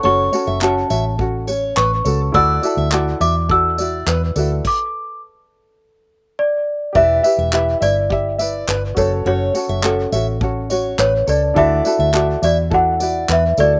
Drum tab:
CC |--------|--------|x-------|--------|
TB |-x-x-x-x|-x-x-x-x|--------|-x-x-x-x|
CP |--x---x-|--x---x-|--------|--x---x-|
BD |----o---|o---o---|o-------|o---o--o|

CC |--------|--------|
TB |-x-x-x-x|-x-x-x-x|
CP |--x---x-|--x---x-|
BD |----o---|o---o---|